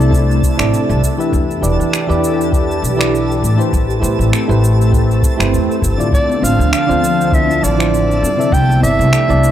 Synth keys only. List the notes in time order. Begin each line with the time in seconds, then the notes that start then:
0.09 C3 C4 E4 A4 D5
0.57 C3 C4 E4 A4 D5
1.17 E3 E4 G4 B4 E5
1.60 E3 E4 G4 B4 D5
2.07 E3 E4 G4 B4 D5
2.50 E3 E4 G4 B4 D5
2.96 E3 E4 G4 B4 D5
3.56 A3 E4 G4 B4 C5
4.00 A3 E4 G4 B4 C5
4.47 A3 E4 G4 B4 C5
4.90 A3 E4 G4 B4 C5
5.37 A3 E4 G4 B4 C5
5.97 D3 D4 E4 F4 D5
6.40 D3 C4 D4 F4 C5
6.87 D3 C4 D4 F4 C5
7.30 D3 D4 E4 F4 C5
7.76 D3 D4 E4 F4 C5
8.37 C3 C4 E4 A4 E5
8.80 C3 C4 E4 A4 D5
9.28 C3 C4 E4 A4 D5